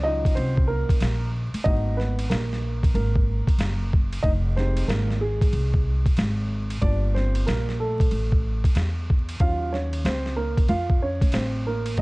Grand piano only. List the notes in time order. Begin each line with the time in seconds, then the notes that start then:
0.04 F#3 C#4 D#4 F4 D#5
0.35 C4 C5
0.67 A#3 A#4
1.64 A#3 B3 D#4 F#4 D#5
1.97 B3 B4
2.30 A#3 A#4
2.95 A#3 A#4
4.23 D#4 D#5
4.56 G#3 C4 D#4 G4 C5
4.88 A#3 A#4
5.21 G#3 G#4
6.82 G3 A#3 D4 F4 D5
7.14 C4 C5
7.46 A#3 A#4
7.80 A3 A4
9.40 F#3 C#4 F4 F5
9.72 C#4 C#5
10.06 C4 C5
10.36 A#3 A#4
10.69 F4 F5
11.02 C#4 C#5
11.34 C4 C5
11.67 A#3 A#4
11.98 D#4